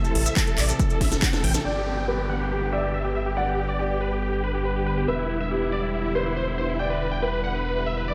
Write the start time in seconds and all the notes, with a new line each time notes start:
Already playing: C3 E3 A3 E4
0.05 A4, closed hi-hat, maracas
0.15 A1 A4, open hi-hat
0.26 E5, closed hi-hat, maracas
0.37 A4, kick, clap, closed hi-hat, maracas
0.47 A4, closed hi-hat, maracas
0.58 A1 D5, clap, open hi-hat
0.69 A4, closed hi-hat, maracas
0.79 A4, kick, closed hi-hat, maracas
0.90 A4, closed hi-hat, maracas
1.01 A1 E5, kick, snare, open hi-hat
1.12 A4, snare, closed hi-hat, maracas
1.22 F#5, kick, snare, clap, closed hi-hat, maracas
1.33 A4, snare, closed hi-hat, maracas
1.44 A1 G5, open hi-hat
1.54 A4, snare, closed hi-hat, maracas
1.65 G1 D3 G3 B3 G4 D5 G5, downlifter
1.76 G4
1.86 G4
1.97 G5
2.08 G4 B4
2.19 G4
2.29 F#5
2.40 G4
2.51 G4
2.62 G4
2.72 D5 E5
2.83 G4
2.94 E5
3.05 G4
3.15 E5
3.26 G4
3.37 D5 F#5
3.47 G4
3.58 G4
3.68 D5
3.79 G4 D5
3.90 G4
4.01 B4
4.11 G4
4.22 G4
4.33 G4
4.44 B4
4.54 G4
4.65 B4
4.76 G4
4.86 B4
4.97 G4
5.08 E1 E4 B4 E5
5.19 E4
5.29 E4
5.40 E5
5.51 E4 G4
5.62 E4
5.72 D5
5.83 E4
5.94 E4
6.04 E4
6.15 B4 C5
6.26 E4
6.36 C5
6.47 E4
6.58 C5
6.69 E4
6.79 D5 G5
6.90 B4
7.01 B4
7.11 G5
7.22 B4
7.33 B4
7.44 F#5
7.54 B4
7.65 B4
7.76 B4
7.86 E5
7.97 B4
8.08 D5